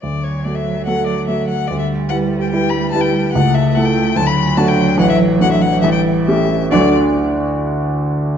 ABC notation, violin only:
X:1
M:4/4
L:1/16
Q:1/4=144
K:D
V:1 name="Violin"
d2 c2 d e3 f2 d2 e2 f2 | d e3 f3 g g2 b2 a g3 | f2 e2 f g3 a b3 a g3 | f e3 f e f2 e g3 e4 |
d2 z12 z2 |]